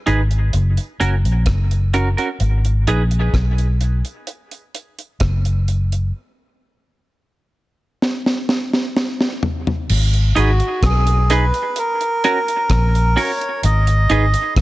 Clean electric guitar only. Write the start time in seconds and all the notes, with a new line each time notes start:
0.06 D#4 G#4 B4
1.00 C#4 F#4 A#4
1.94 C#4 F#4 A#4
2.17 C#4 F#4 A#4
2.88 D#4 G#4 B4
10.36 D#4 G#4 B4
11.30 D#4 G#4 B4
12.24 C#4 F#4 A#4
13.16 C#4 F#4 A#4
14.10 D#4 G#4 B4